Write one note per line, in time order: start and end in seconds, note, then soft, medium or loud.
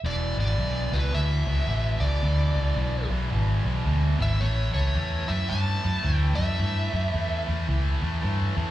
0.04 0.32 E1 medium
0.04 0.38 E2 medium
0.04 0.39 B2 medium
0.04 0.40 E3 medium
0.04 0.39 D5 loud
0.37 0.55 G#1 medium
0.37 0.59 E2 medium
0.37 0.59 B2 medium
0.37 0.60 E3 medium
0.37 0.96 D5 medium
0.58 0.86 B1 medium
0.58 0.92 E2 medium
0.58 0.91 B2 medium
0.58 0.93 E3 medium
0.92 1.10 C#2 medium
0.92 1.10 E2 medium
0.92 1.11 B2 medium
0.92 1.12 E3 medium
0.92 1.15 B4 medium
1.11 1.42 D2 medium
1.11 1.46 E2 medium
1.11 1.46 B2 medium
1.11 1.48 E3 medium
1.11 2.05 E5 loud
1.47 1.64 C#2 medium
1.47 1.66 E2 medium
1.47 1.67 B2 medium
1.47 1.68 E3 medium
1.67 1.96 A1 medium
1.67 2.01 E2 medium
1.67 2.02 B2 medium
1.67 2.03 E3 medium
2.00 2.18 C#2 medium
2.00 2.22 E2 medium
2.00 2.22 B2 medium
2.00 2.24 E3 medium
2.00 3.06 D5 medium
2.23 2.51 D2 medium
2.23 2.56 E2 medium
2.23 2.57 B2 medium
2.23 2.59 E3 medium
2.55 2.73 C#2 medium
2.55 2.76 E2 medium
2.55 2.76 B2 medium
2.55 2.77 E3 medium
2.76 3.05 B1 medium
2.76 3.09 E2 medium
2.76 3.10 B2 medium
2.76 3.11 E3 medium
3.10 3.28 B1 medium
3.10 3.30 E2 medium
3.10 3.31 B2 medium
3.10 3.32 E3 medium
3.31 3.59 G#1 medium
3.31 3.64 E2 medium
3.31 3.65 B2 medium
3.31 3.66 E3 medium
3.65 3.82 B1 medium
3.65 3.83 E2 medium
3.65 3.85 B2 medium
3.65 3.86 E3 medium
3.85 4.14 D2 medium
3.85 4.17 E2 medium
3.85 4.18 B2 medium
3.85 4.19 E3 medium
4.18 4.37 G#1 medium
4.18 4.39 E2 medium
4.18 4.39 B2 medium
4.18 4.40 E3 medium
4.22 4.43 E5 medium
4.39 4.69 A1 medium
4.39 4.72 A2 medium
4.39 4.73 E3 medium
4.39 4.74 A3 loud
4.39 4.73 C#5 medium
4.72 4.92 C#2 medium
4.72 4.94 A2 medium
4.72 4.94 E3 medium
4.72 4.95 A3 medium
4.72 5.31 C#5 medium
4.94 5.23 E2 medium
4.94 5.27 A2 medium
4.94 5.28 E3 medium
4.94 5.28 A3 medium
5.28 5.46 F#2 medium
5.28 5.47 A2 medium
5.28 5.49 E3 medium
5.28 5.49 A3 medium
5.28 5.50 E5 medium
5.48 5.78 G2 medium
5.48 5.82 A2 medium
5.48 5.83 E3 medium
5.48 5.83 A3 medium
5.48 6.15 A5 loud
5.84 6.01 F#2 medium
5.84 6.03 A2 medium
5.84 6.05 E3 medium
5.84 6.05 A3 medium
6.04 6.32 D2 medium
6.04 6.37 A2 medium
6.04 6.39 E3 medium
6.04 6.39 A3 medium
6.15 6.40 G5 loud
6.35 6.55 F#2 medium
6.35 6.58 A2 medium
6.35 7.42 E5 medium
6.40 6.59 E3 medium
6.40 6.60 A3 medium
6.59 6.87 G2 medium
6.59 6.92 A2 medium
6.59 6.93 E3 medium
6.59 6.94 A3 medium
6.93 7.10 F#2 medium
6.93 7.13 A2 medium
6.93 7.14 E3 medium
6.93 7.14 A3 medium
7.14 7.42 E2 medium
7.14 7.46 A2 medium
7.14 7.47 E3 medium
7.14 7.47 A3 medium
7.47 7.65 E2 medium
7.47 7.66 A2 medium
7.47 7.67 E3 medium
7.47 7.68 A3 medium
7.67 7.96 C#2 medium
7.67 8.02 A2 medium
7.67 8.02 E3 medium
7.67 8.02 A3 medium
8.02 8.19 E2 medium
8.02 8.21 A2 medium
8.02 8.22 E3 medium
8.02 8.22 A3 medium
8.22 8.51 G2 medium
8.22 8.55 A2 medium
8.22 8.56 E3 medium
8.22 8.56 A3 medium
8.57 8.71 E2 medium
8.57 8.71 A2 medium
8.57 8.71 E3 medium
8.57 8.71 A3 medium